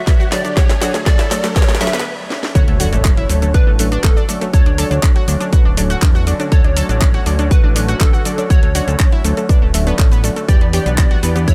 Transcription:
Already playing: D3 A3 D4 F#4 E5, riser
0.07 F#3 D4 A4 B4, kick, snare, closed hi-hat, shaker
0.20 F#4, shaker
0.32 F#3 D4 A4 C#5 D5, snare, open hi-hat, shaker
0.45 F#3 D4 A4 D5, closed hi-hat, shaker
0.57 F#3 D4 F#4 A4 C#5, kick, snare, closed hi-hat, shaker
0.69 A3, snare, closed hi-hat, shaker
0.82 F#3 D4 F#4 A4 D5, snare, open hi-hat, shaker
0.94 A3, snare, closed hi-hat, shaker
1.06 F#3 A3 D4 A4 C#5 D5, kick, snare, closed hi-hat, shaker
1.19 E4, snare, closed hi-hat, shaker
1.31 F#3 A3 D4 A4 C#5, snare, open hi-hat, shaker
1.44 F#3 A3 D4 A4 C#5, snare, closed hi-hat, shaker
1.56 F#3 D4 B4 C#5, kick, snare, closed hi-hat, shaker
1.62 snare
1.69 A3, snare, shaker
1.75 snare
1.81 F#3 A3 D4 A4 C#5 E5, snare, open hi-hat, shaker
1.87 snare
1.93 B3, snare, closed hi-hat, shaker
2.00 snare
2.30 snare
2.43 snare
2.55 D2 F#3 D4 F#4 A4 C#5, kick, closed hi-hat, impact, shaker
2.68 A3, closed hi-hat
2.80 F#3 D4 F#4 A4 D5, open hi-hat, shaker
2.93 A1 A3, closed hi-hat, shaker
3.04 F#3 A3 D4 A4 C#5, kick, clap, closed hi-hat, shaker
3.17 E4, closed hi-hat
3.30 D2 F#3 A3 D4 A4 C#5, open hi-hat, shaker
3.42 F#3 A3 D4 A4 C#5, closed hi-hat, shaker
3.54 F#3 D4 A4 B4, kick, closed hi-hat, shaker
3.67 A1 A3
3.79 F#3 A3 D4 A4 C#5, open hi-hat, shaker
3.92 D4, closed hi-hat, shaker
4.04 D1 F#3 A3 D4 A4 B4, kick, clap, closed hi-hat, shaker
4.17 D4, shaker
4.29 F#3 A3 D4 A4 D5, open hi-hat, shaker
4.41 F#3 A3 D4 A4 C#5, closed hi-hat, shaker
4.53 D2 F#3 D4 A4 C#5, kick, closed hi-hat, shaker
4.66 D4, closed hi-hat
4.78 F#3 D4 A4 D5, open hi-hat, shaker
4.91 D2 D4, closed hi-hat, shaker
5.03 F#3 D4 A4 C#5, kick, clap, closed hi-hat, shaker
5.16 F#4, closed hi-hat
5.28 D2 F#3 D4 A4 C#5, open hi-hat, shaker
5.41 F#3 D4 A4 C#5, closed hi-hat, shaker
5.53 F#3 D4 F#4 A4 B4, kick, closed hi-hat, shaker
5.65 D1 D4
5.77 F#3 D4 A4 C#5, open hi-hat, shaker
5.90 F#4, closed hi-hat, shaker
6.02 E2 F#3 D4 A4 B4, kick, clap, closed hi-hat, shaker
6.15 F#4, shaker
6.27 F#3 D4 A4 D5, open hi-hat, shaker
6.40 F#3 D4 A4 C#5, closed hi-hat, shaker
6.52 D2 F#3 D4 A4 C#5, kick, closed hi-hat, shaker
6.64 D4, closed hi-hat
6.77 F#3 D4 A4 D5, open hi-hat, shaker
6.89 A1 D4, closed hi-hat, shaker
7.01 F#3 D4 A4 C#5, kick, clap, closed hi-hat, shaker
7.14 F#4, closed hi-hat
7.26 D2 F#3 D4 A4 C#5, open hi-hat, shaker
7.39 F#3 D4 A4 C#5, closed hi-hat, shaker
7.51 F#3 D4 F#4 A4 B4, kick, closed hi-hat, shaker
7.64 A1 D4
7.76 F#3 D4 A4 C#5, open hi-hat, shaker
7.88 F#4, closed hi-hat, shaker
8.00 D1 F#3 D4 A4 B4, kick, clap, closed hi-hat, shaker
8.13 F#4, shaker
8.25 F#3 D4 A4 D5, open hi-hat, shaker
8.38 F#3 D4 A4 C#5, closed hi-hat, shaker
8.50 D2 F#3 D4 F#4 A4 C#5, kick, closed hi-hat, shaker
8.63 A3, closed hi-hat
8.75 F#3 D4 F#4 A4 D5, open hi-hat, shaker
8.88 D2 A3, closed hi-hat, shaker
8.99 F#3 A3 D4 A4 C#5, kick, clap, closed hi-hat, shaker
9.12 E4, closed hi-hat
9.25 D2 F#3 A3 D4 A4 C#5, open hi-hat, shaker
9.37 F#3 A3 D4 A4 C#5, closed hi-hat, shaker
9.49 F#3 D4 B4, kick, closed hi-hat, shaker
9.62 D1 A3
9.74 F#3 A3 D4 A4 E5, open hi-hat, shaker
9.87 F#3 B3 D4 A4 D5, closed hi-hat, shaker
9.99 A1 F#3 A3 D4 C#5, kick, clap, closed hi-hat, shaker
10.12 B3, closed hi-hat, shaker
10.24 F#3 A3 D4 A4 D5, open hi-hat, shaker
10.36 A3, closed hi-hat, shaker
10.48 E2 E3 D4 G4 B4 D5, kick, closed hi-hat, shaker
10.61 B3, closed hi-hat
10.73 E3 D4 G4 C#5, open hi-hat, shaker
10.86 B1 B3, closed hi-hat, shaker
10.98 E3 B3 D4 G4 B4, kick, clap, closed hi-hat, shaker
11.11 F#4, closed hi-hat
11.23 E2 E3 B3 D4 G4 B4, open hi-hat, shaker
11.36 E3 B3 D4 G4 B4, closed hi-hat, shaker
11.48 E3 D4 E4 A4 C#5, kick, closed hi-hat, shaker

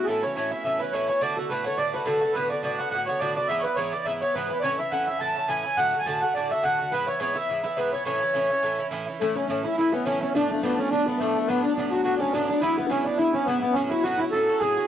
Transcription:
Already playing: A3 B3 C#4 E4 F#4
0.04 A2 G#4 A4
0.08 E3 C#4 E4 A4
0.23 E3 C#4 E4 C#5
0.35 A2 E3 C#4 E4 C#5
0.50 C#4 E4 E5
0.55 E3
0.64 A2 E3 C#4 E4 E5
0.79 C#4 E4 B4
0.83 E3
0.92 A2 E3 C#4 E4 C#5
1.08 E3 C#4 E4 C#5
1.21 A2 D3 A3 F#4 D5
1.36 D3 A3 F#4 A4
1.49 A2 D3 A3 F#4 B4
1.64 D3 A3 F#4 C#5
1.78 A2 D3 A3 F#4 D5
1.93 D3 A3 F#4 B4
2.05 A2 D3 A3 F#4 A4
2.21 D3 A3 F#4
2.33 A2 D3 B3 F#4 B4
2.50 D3 B3 F#4 D5
2.63 A2 D3 B3 F#4 D5
2.78 B3 F#4 F#5
2.82 D3
2.91 A2 D3 B3 F#5
2.95 F#4
3.06 B3 F#4 C#5
3.10 D3
3.19 A2 D3 B3 F#4 D5
3.35 B3 F#4 D5
3.39 D3
3.48 G#2 E3 B3 E4 E5
3.60 B4 C#5
3.64 E3 B3 E4 B4
3.76 G#2 E3 B3 E4 C#5
3.91 B3 E4 D5
3.95 E3
4.05 G#2 E3 B3 E4 E5
4.21 E3 B3 E4 C#5
4.34 G#2 E3 B3 E4 B4
4.49 B3 E4 B4
4.53 E3
4.60 A2 C#5 D5
4.64 E3 C#4 E4
4.78 C#4 E4 E5
4.83 E3
4.91 A2 E3 C#4 E4 F#5
5.07 E3 C#4 E4 E5
5.19 A2 E3 C#4 E4 A5
5.35 E3 C#4 E4
5.48 A2 E3 C#4 E4 G#5
5.64 E3 C#4 E4
5.77 A2 D3 A3 F#4 F#5
5.84 F#5 G#5
5.90 F#4 F#5
5.95 D3 A3
5.99 G#5
6.05 A2 D3 A3 F#4 A5
6.21 D3 A3 F#4 F#5
6.34 A2 D3 A3 D5
6.38 F#4
6.51 D3 A3 F#4 E5
6.63 A2 D3 A3 F#4 F#5
6.78 D3 A3 F#4
6.91 G#2 E3 B3 E4 B4
7.06 B3 E4 C#5
7.11 E3
7.18 G#2 E3 B3 E4 C#5
7.34 B3 E4 E5
7.38 E3
7.49 G#2 E3 B3 E4
7.63 E3 B3 E4 E5
7.77 G#2 E3 B3 E4 B4
7.92 E3 B3 E4 C#5
8.05 A2 E3 C#4 E4 C#5
8.20 E3 C#4 E4
8.34 A2 E3 C#4 E4
8.50 E3 C#4 E4
8.63 A2 E3 C#4 E4
8.78 E3 C#4 E4
8.91 A2 E3 C#4 E4
9.07 E3 C#4 E4
9.20 A2 E3 A3 C#4 E4 A4
9.35 C#4 E4 C#5
9.40 E3
9.48 A2 E3 C#4 C#5
9.52 E4
9.64 E3 C#4 E4
9.77 A2 E3 C#4 E4
9.92 E3 B3 C#4 E4 B4
10.05 A2 E3 C#4 E4 C#5
10.21 E3 C#4 E4 C#5
10.35 A2 F3 A3 D4
10.49 A3 D4
10.54 F3
10.62 A2 F3 A3 B3 D4 B4
10.77 F3 A3 C#4 D4 C#5
10.91 A2 F3 A3 D4
11.06 A3 B3 D4 B4
11.10 F3
11.18 A2 F3 A3 A4
11.23 D4
11.36 F3 A3 D4
11.47 A2 F#3 B3 D4 B4
11.63 B3 D4
11.68 F#3
11.75 A2 D4
11.79 F#3 B3 D4
11.90 B3 D4 F#4
11.94 F#3
12.03 A2 F#3 B3 F#4
12.08 D4
12.17 C#4 D4 C#5
12.22 F#3 B3 C#4
12.31 A2 F#3 B3 D4
12.36 D4
12.48 B3 D4
12.53 F#3
12.61 G#2 E3 B3 E4
12.77 B3 E4 B4
12.81 E3
12.87 G#2 E3 B3 C#4 D4 C#5
12.92 E4
13.04 B3 D4 E4
13.09 E3
13.17 G#2 E3 B3 E4
13.22 E4
13.33 E3 B3 C#4 E4 C#5
13.45 G#2 E3 B3 B4
13.49 B3 E4
13.59 B3 E4
13.64 E3 B3
13.72 A2 C#4 C#5
13.77 F#3 C#4 F#4
13.89 E4 F#4
13.93 F#3 C#4
14.02 A2 F#3 F#4
14.07 C#4 F#4
14.18 C#4 E4 F#4
14.23 F#3
14.31 A2 F#3 C#4 A4
14.36 F#4
14.49 F#3 C#4 F#4
14.60 A2 F#3 C#4 F#4 G#4
14.77 F#3 C#4 F#4

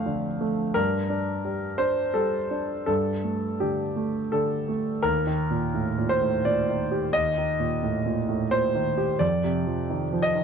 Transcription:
Already playing: F2 D3 A3 F5 A5
0.06 D3
0.41 A3
0.74 G2 A#4
1.10 D4
1.45 G3
1.78 D4 C5
2.14 G3 A4
2.51 D4
2.86 G2 A4
3.24 A3
3.60 D3 G4
3.96 A3
4.32 D3 A4
4.68 A3
5.03 D#2 A#4
5.27 D#3
5.50 A#2
5.74 A2
5.98 A#2
6.09 C5
6.21 A2
6.45 A#2 D5
6.70 D#3
6.92 G4
7.13 D#2 D#5
7.38 D#3
7.60 A#2
7.83 A2
8.05 A#2
8.29 A2
8.51 A#2 C5
8.75 D#3
8.98 G4
9.19 F2 D5
9.44 C3
9.67 F3
9.90 D#3
10.13 F3
10.22 D#5
10.35 D#3

